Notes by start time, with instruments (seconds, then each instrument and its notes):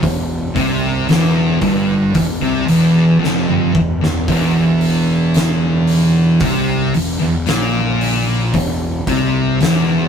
0.02 fingered electric bass E1, distorted electric guitar E2, kick, open hi-hat
0.55 fingered electric bass C2, distorted electric guitar C3, kick, open hi-hat
1.08 fingered electric bass E1, distorted electric guitar E2, snare, open hi-hat
1.61 fingered electric bass G1, distorted electric guitar G2, kick, open hi-hat
2.14 fingered electric bass E1, distorted electric guitar E2, kick, open hi-hat
2.40 fingered electric bass C2, distorted electric guitar C3
2.66 fingered electric bass E1, distorted electric guitar E2, open hi-hat
3.19 fingered electric bass F1, distorted electric guitar F2
3.24 snare
3.48 mid tom
3.74 fingered electric bass E1, distorted electric guitar E2, kick
4.01 fingered electric bass E1, distorted electric guitar E2, snare
4.28 fingered electric bass E1, distorted electric guitar E2, kick, open hi-hat
4.81 open hi-hat
5.34 snare, open hi-hat
5.87 open hi-hat
6.40 fingered electric bass C2, distorted electric guitar C3, kick, open hi-hat
6.94 fingered electric bass E1, distorted electric guitar E2, open hi-hat
7.19 fingered electric bass E1, distorted electric guitar E2
7.46 fingered electric bass A#1, distorted electric guitar A#2, snare, open hi-hat
8.01 open hi-hat
8.54 fingered electric bass E1, distorted electric guitar E2, kick, open hi-hat
9.07 fingered electric bass C2, distorted electric guitar C3, kick, open hi-hat
9.60 fingered electric bass E1, distorted electric guitar E2, snare, open hi-hat